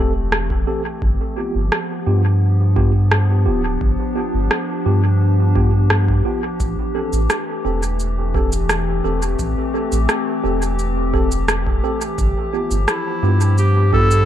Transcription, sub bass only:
0.00 0.64 E1 medium
1.02 1.18 G1 medium
1.55 1.70 G1 medium
2.07 3.48 G2 loud
3.46 3.77 D1 loud
3.81 3.97 G1 medium
4.34 4.49 G1 medium
4.86 6.22 G2 medium
6.60 6.76 A1 medium
7.13 7.28 A1 medium
7.65 9.01 E1 medium
9.04 9.35 E1 loud
9.39 9.55 A1 medium
9.92 10.07 A1 medium
10.44 11.80 E1 loud
12.18 12.34 G1 medium
12.71 12.86 G1 medium
13.23 14.25 G2 loud

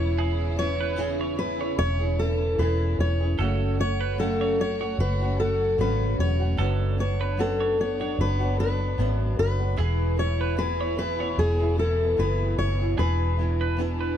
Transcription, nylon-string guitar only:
0.00 0.55 E3 medium
0.00 0.57 C#4 medium
0.00 0.57 E4 medium
0.00 0.58 G#4 medium
0.57 0.95 E3 medium
0.57 0.96 C#4 medium
0.57 0.97 E4 medium
0.57 0.97 G#4 medium
0.96 1.35 E3 medium
0.96 1.36 C#4 medium
0.96 1.37 E4 medium
0.96 1.38 G#4 loud
1.36 1.59 E3 medium
1.36 1.60 C#4 medium
1.36 1.59 E4 medium
1.36 1.58 G#4 medium
1.59 2.01 C#4 soft
1.59 2.00 E4 soft
1.59 1.98 G#4 soft
1.99 2.18 C#4 soft
1.99 2.19 E4 medium
1.99 2.18 G#4 medium
2.18 2.57 E3 medium
2.18 2.58 C#4 medium
2.18 2.59 E4 medium
2.58 3.20 E3 medium
2.58 3.21 C#4 medium
2.58 3.21 E4 medium
2.58 3.19 G#4 medium
3.20 3.39 C#4 soft
3.20 3.39 E4 soft
3.20 3.38 G#4 soft
3.38 3.78 F#2 medium
3.38 3.78 C#3 medium
3.38 3.77 F#3 medium
3.38 3.78 A3 medium
3.38 3.79 C#4 medium
3.38 3.79 F#4 medium
3.78 4.18 F#3 medium
3.78 4.18 A3 medium
3.78 4.19 C#4 medium
3.78 4.19 F#4 medium
4.18 4.58 F#2 medium
4.18 4.59 C#3 medium
4.18 4.57 F#3 medium
4.18 4.59 A3 medium
4.18 4.59 C#4 medium
4.18 4.59 F#4 loud
4.58 4.80 F#3 medium
4.58 4.81 A3 medium
4.58 4.80 C#4 medium
4.58 4.79 F#4 medium
4.80 5.22 F#3 soft
4.80 5.21 A3 soft
4.80 5.20 C#4 medium
4.80 5.19 F#4 medium
5.20 5.37 F#3 soft
5.20 5.38 A3 medium
5.20 5.39 C#4 medium
5.20 5.38 F#4 medium
5.38 5.78 F#3 medium
5.38 5.78 A3 medium
5.38 5.78 C#4 medium
5.38 5.79 F#4 medium
5.78 6.40 F#2 medium
5.78 6.40 C#3 medium
5.78 6.41 F#3 medium
5.78 6.41 A3 medium
5.78 6.39 C#4 medium
5.78 6.38 F#4 medium
6.39 6.57 F#3 soft
6.39 6.59 A3 soft
6.39 6.58 C#4 medium
6.39 6.58 F#4 medium
6.57 6.98 F#2 medium
6.57 6.96 F#3 medium
6.57 6.97 B3 medium
6.57 6.98 D4 medium
6.57 6.99 F#4 medium
6.98 7.37 F#3 medium
6.98 7.38 B3 medium
6.98 7.38 D4 medium
6.98 7.38 F#4 medium
7.37 7.78 F#2 medium
7.37 7.76 F#3 medium
7.37 7.77 B3 loud
7.37 7.78 D4 loud
7.37 7.79 F#4 loud
7.77 8.00 F#3 medium
7.77 8.00 B3 medium
7.77 7.99 D4 medium
7.77 7.98 F#4 medium
8.00 8.41 F#3 soft
8.00 8.40 B3 soft
8.00 8.39 D4 medium
8.00 8.38 F#4 medium
8.39 8.56 F#3 medium
8.39 8.58 B3 medium
8.39 8.58 D4 medium
8.39 8.58 F#4 medium
8.58 8.98 F#3 medium
8.58 8.98 B3 medium
8.58 8.99 D4 medium
8.58 8.99 F#4 medium
8.98 9.60 F#2 medium
8.98 9.61 F#3 medium
8.98 9.60 B3 medium
8.98 9.59 D4 medium
8.98 9.58 F#4 loud
9.59 9.76 F#3 soft
9.59 9.76 B3 medium
9.59 9.78 D4 medium
9.59 9.78 F#4 medium
9.76 10.15 E3 medium
9.76 10.16 B3 medium
9.76 10.18 E4 medium
9.76 10.19 G#4 medium
10.16 10.55 E3 medium
10.16 10.56 B3 medium
10.16 10.57 E4 medium
10.16 10.57 G#4 medium
10.57 10.95 E3 medium
10.57 10.96 B3 medium
10.57 10.97 E4 medium
10.57 10.98 G#4 medium
10.96 11.19 E3 medium
10.96 11.20 B3 medium
10.96 11.19 E4 medium
10.96 11.17 G#4 medium
11.18 11.61 B3 soft
11.18 11.59 E4 soft
11.18 11.57 G#4 medium
11.58 11.76 B3 soft
11.58 11.77 E4 medium
11.58 11.77 G#4 medium
11.76 12.16 E3 medium
11.76 12.17 B3 medium
11.76 12.17 E4 medium
12.17 12.80 E3 medium
12.17 12.80 B3 medium
12.17 12.79 E4 medium
12.17 12.78 G#4 medium
12.79 12.97 B3 soft
12.79 12.97 E4 soft
12.79 12.98 G#4 soft
12.97 13.36 E3 medium
12.97 13.37 B3 medium
12.97 13.38 E4 medium
12.97 13.39 G#4 medium
13.37 13.76 E3 medium
13.37 13.77 B3 medium
13.37 13.78 E4 medium
13.37 13.78 G#4 medium
13.77 14.16 E3 medium
13.77 14.17 B3 medium
13.77 14.17 E4 loud
13.77 14.17 G#4 medium

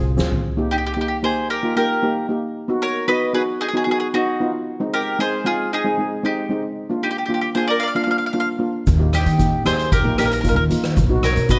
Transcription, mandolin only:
0.71 0.79 D#4 medium
0.71 0.77 G4 medium
0.78 0.85 G4 medium
0.86 0.92 G4 medium
0.94 1.00 G4 medium
1.01 1.07 G4 medium
1.08 1.16 G4 medium
1.24 1.49 G#4 medium
1.24 1.50 C5 medium
1.50 1.75 G4 medium
1.50 1.75 A#4 loud
1.77 2.26 G4 medium
1.77 2.25 A#4 medium
2.82 3.06 A#4 medium
2.82 3.07 C#5 loud
3.08 3.33 B4 medium
3.08 3.34 D#5 loud
3.34 3.42 G#4 medium
3.34 3.41 B4 medium
3.61 3.68 D#4 medium
3.61 3.67 G#4 medium
3.69 3.76 G#4 medium
3.77 3.83 G#4 medium
3.84 3.90 G#4 medium
3.91 3.99 G#4 medium
4.00 4.07 G#4 medium
4.14 4.51 D#4 medium
4.14 4.51 F#4 medium
4.94 5.18 G4 medium
4.94 5.20 A#4 loud
5.20 5.44 G#4 medium
5.20 5.47 C5 loud
5.46 5.70 F4 medium
5.46 5.73 G#4 medium
5.73 6.21 D#4 medium
5.73 6.25 G#4 loud
6.25 6.61 D#4 medium
6.25 6.62 G4 medium
7.03 7.10 D#4 medium
7.03 7.10 G4 medium
7.11 7.17 G4 medium
7.18 7.24 G4 medium
7.26 7.33 G4 medium
7.34 7.40 G4 medium
7.41 7.49 G4 medium
7.55 7.69 G#4 medium
7.55 7.67 C5 medium
7.68 7.82 A#4 medium
7.68 7.82 D5 medium
7.80 7.89 D5 medium
7.80 7.86 F5 loud
7.88 7.94 F5 medium
7.96 8.02 F5 medium
8.04 8.10 F5 medium
8.11 8.17 F5 medium
8.18 8.25 F5 medium
8.26 8.32 F5 medium
8.33 8.39 F5 medium
8.40 8.48 F5 medium
9.13 9.62 D#4 medium
9.13 9.63 G4 medium
9.66 9.90 G#4 medium
9.66 9.92 C5 loud
9.92 10.17 G4 medium
9.92 10.17 A#4 loud
10.18 10.26 G4 medium
10.18 10.24 A#4 medium
10.25 10.32 A#4 medium
10.33 10.40 A#4 medium
10.41 10.48 A#4 medium
10.49 10.55 A#4 medium
10.56 10.63 A#4 medium
11.24 11.48 A#4 medium
11.24 11.51 C#5 loud
11.50 11.59 B4 medium
11.50 11.59 D#5 loud

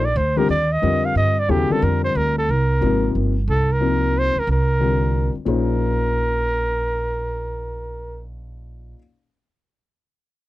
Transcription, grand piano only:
0.37 0.48 D3 medium
0.37 0.48 G3 medium
0.37 0.48 C4 medium
0.37 0.48 F4 medium
0.37 0.48 G4 medium
0.82 1.32 D3 soft
0.82 1.33 G3 soft
0.82 1.33 C4 soft
0.82 1.33 F4 medium
0.82 1.33 A#4 medium
1.48 1.68 C#3 medium
1.48 1.68 F#3 medium
1.48 1.68 B3 soft
1.48 1.68 E4 soft
1.48 1.68 A4 medium
1.70 2.41 D3 medium
1.70 2.41 G3 medium
1.70 2.41 C4 medium
1.70 2.42 F4 soft
1.70 2.42 A#4 medium
2.81 3.32 C3 medium
2.81 3.32 F3 soft
2.81 3.32 A#3 soft
2.81 3.32 D#4 soft
2.81 3.32 A#4 medium
3.81 4.31 C3 medium
3.81 4.31 F3 soft
3.81 4.31 A#3 soft
3.81 4.32 D#4 soft
3.81 4.32 A#4 medium
4.80 5.31 D3 soft
4.80 5.31 G3 soft
4.80 5.31 C4 soft
4.80 5.31 F4 soft
4.80 5.31 A#4 soft
5.45 8.96 A#2 medium
5.45 8.96 F3 soft
5.45 8.96 C#4 soft
5.45 8.96 D#4 soft
5.45 8.97 G#4 soft
5.45 8.97 C5 medium

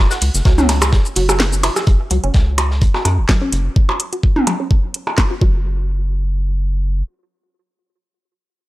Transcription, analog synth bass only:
0.22 0.30 C#2 medium
0.35 0.42 F#1 loud
0.45 0.99 C#2 medium
1.16 1.69 F#1 medium
1.87 1.96 F#1 loud
2.11 2.19 C#2 medium
2.24 2.31 F#1 loud
2.34 2.88 C#2 medium
3.05 3.20 F#2 loud
3.18 3.25 F#1 medium
3.53 3.69 F#1 loud
5.41 7.03 F#1 medium

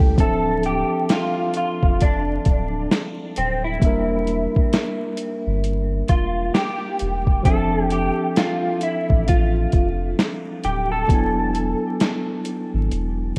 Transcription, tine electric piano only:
0.00 0.18 G3 medium
0.00 0.19 A3 medium
0.00 0.19 C#4 medium
0.00 0.19 E4 medium
0.00 0.20 A4 medium
0.16 3.77 F3 medium
0.16 3.78 C4 medium
0.16 3.79 D4 medium
0.21 3.80 A4 medium
0.21 3.79 E5 medium
3.80 7.41 G3 medium
3.80 7.41 A#3 medium
3.80 7.42 D4 medium
3.85 7.44 A#4 medium
3.85 7.43 E5 medium
7.43 11.04 F3 medium
7.43 11.05 C4 medium
7.43 11.06 D4 medium
7.48 11.07 A4 medium
7.48 11.07 E5 medium
11.08 13.39 F#3 medium
11.08 13.39 B3 medium
11.08 13.39 D4 medium
11.12 13.39 E4 medium
11.12 13.39 G#5 medium

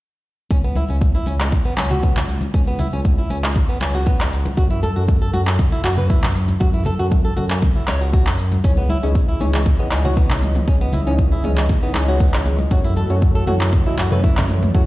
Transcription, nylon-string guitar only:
0.51 0.58 C#4 medium
0.64 0.76 B3 medium
0.76 0.84 E4 medium
0.90 0.96 C#4 medium
1.15 1.26 E4 medium
1.27 1.34 C#4 medium
1.40 1.47 G#3 medium
1.65 1.77 B3 medium
1.77 1.90 C#4 medium
1.91 2.02 F#4 medium
2.03 2.16 B3 medium
2.54 2.61 C#4 medium
2.68 2.79 B3 medium
2.79 2.87 E4 medium
2.93 3.00 C#4 medium
3.18 3.29 E4 medium
3.30 3.38 C#4 medium
3.44 3.50 G#3 medium
3.69 3.81 B3 medium
3.81 3.93 C#4 medium
3.95 4.06 F#4 medium
4.06 4.19 B3 medium
4.57 4.65 F#4 medium
4.71 4.82 E4 medium
4.83 4.90 A4 medium
4.96 5.03 F#4 medium
5.22 5.33 A4 medium
5.34 5.41 F#4 medium
5.47 5.54 C#4 medium
5.72 5.84 E4 medium
5.84 5.97 F#4 medium
5.98 6.09 B4 medium
6.10 6.23 E4 medium
6.60 6.68 F#4 medium
6.74 6.85 E4 medium
6.86 6.93 A4 medium
6.99 7.06 F#4 medium
7.25 7.36 A4 medium
7.37 7.44 F#4 medium
7.50 7.57 C#4 medium
7.76 7.87 E4 medium
7.88 8.00 C#5 medium
8.01 8.12 F#4 medium
8.14 8.26 F#4 medium
8.64 8.71 C#4 medium
8.78 8.89 B3 medium
8.90 8.97 E4 medium
9.03 9.10 C#4 medium
9.29 9.39 E4 medium
9.40 9.48 C#4 medium
9.54 9.60 G#3 medium
9.79 9.91 B3 medium
9.91 10.03 C#4 medium
10.05 10.16 F#4 medium
10.17 10.30 B3 medium
10.68 10.75 C#4 medium
10.81 10.93 B3 medium
10.93 11.00 E4 medium
11.07 11.13 C#4 medium
11.32 11.43 E4 medium
11.44 11.51 C#4 medium
11.57 11.64 G#3 medium
11.83 11.94 B3 medium
11.95 12.07 C#4 medium
12.09 12.20 F#4 medium
12.21 12.33 B3 medium
12.71 12.78 F#4 medium
12.85 12.96 E4 medium
12.97 13.04 A4 medium
13.10 13.16 F#4 medium
13.35 13.46 A4 medium
13.47 13.55 F#4 medium
13.61 13.67 C#4 medium
13.86 13.98 E4 medium
13.98 14.10 F#4 medium
14.12 14.23 B4 medium
14.24 14.37 E4 medium
14.75 14.82 F#4 medium

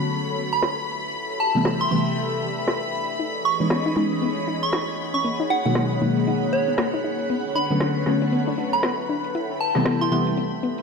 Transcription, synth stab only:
0.00 1.13 D3 medium
0.00 1.13 F#3 medium
0.00 1.13 A3 medium
0.00 1.13 B3 medium
0.00 1.13 C#4 medium
1.55 1.89 C3 medium
1.55 1.89 E3 medium
1.55 1.89 G3 medium
1.55 1.89 A3 medium
1.55 1.89 B3 medium
1.91 3.18 C3 medium
1.91 3.18 E3 medium
1.91 3.18 G3 medium
1.91 3.18 A3 medium
1.91 3.18 B3 medium
3.60 3.94 E3 medium
3.60 3.94 G#3 medium
3.60 3.94 B3 medium
3.60 3.94 C#4 medium
3.60 3.94 D#4 medium
3.96 5.23 E3 medium
3.96 5.23 G#3 medium
3.96 5.23 B3 medium
3.96 5.24 C#4 medium
3.96 5.24 D#4 medium
5.65 5.99 B2 medium
5.65 5.99 D#3 medium
5.65 5.99 F#3 medium
5.65 5.99 G#3 medium
5.65 5.99 A#3 medium
6.01 7.28 B2 medium
6.01 7.28 D#3 medium
6.01 7.29 F#3 medium
6.01 7.29 G#3 medium
6.01 7.29 A#3 medium
7.70 8.04 D3 medium
7.70 8.04 F#3 medium
7.70 8.04 A3 medium
7.70 8.04 B3 medium
7.70 8.04 C#4 medium
8.06 9.33 D3 medium
8.06 9.34 F#3 medium
8.06 9.34 A3 medium
8.06 9.34 B3 medium
8.06 9.34 C#4 medium
9.76 10.09 C3 medium
9.76 10.09 E3 medium
9.76 10.09 G3 medium
9.76 10.09 A3 medium
9.76 10.09 B3 medium
10.11 10.82 C3 medium
10.11 10.82 E3 medium
10.11 10.82 G3 medium
10.11 10.82 A3 medium
10.11 10.82 B3 medium

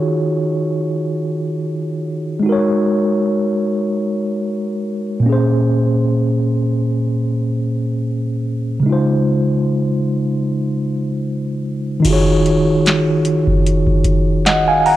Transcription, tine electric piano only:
0.00 2.39 D#3 medium
0.00 2.40 D#4 medium
0.00 2.41 F4 medium
0.00 2.42 F#4 medium
0.00 2.44 G#4 medium
0.00 2.45 C#5 medium
2.40 5.18 G#3 medium
2.40 5.20 D#4 medium
2.46 5.21 F#4 medium
2.46 5.23 A#4 medium
2.52 5.25 C#5 medium
5.20 8.38 A#2 medium
5.20 8.40 A#3 medium
5.26 8.41 C#4 medium
5.26 8.43 G#4 medium
5.32 8.45 C5 medium
8.80 11.98 C#3 medium
8.80 12.00 G#3 medium
8.86 12.01 D#4 medium
8.86 12.03 F4 medium
8.93 12.05 C5 medium
12.00 14.96 D#3 medium
12.00 14.96 D#4 medium
12.05 14.96 F4 medium
12.05 14.96 F#4 medium
12.10 14.96 G#4 medium
12.10 14.96 C#5 medium
14.46 14.67 D#5 medium
14.46 14.66 F#5 medium
14.68 14.85 F5 medium
14.68 14.84 G#5 medium
14.86 14.96 F#5 medium
14.86 14.96 A#5 medium

